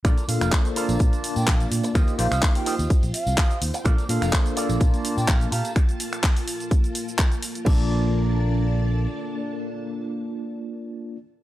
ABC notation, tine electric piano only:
X:1
M:4/4
L:1/8
Q:"Swing 16ths" 1/4=126
K:Bb
V:1 name="Tine electric piano"
[B,DFAd] [B,DFAf] A [B,DFAd] [Fda]4 | [B,EFGe] [B,EFGc] [B,EFGf] [B,EFGc] z4 | [B,DFAd] [B,DFAf] [B,DFAc] [B,DFAd] [B,DFda]3 z | z8 |
[B,DFda]8- | [B,DFda]8 |]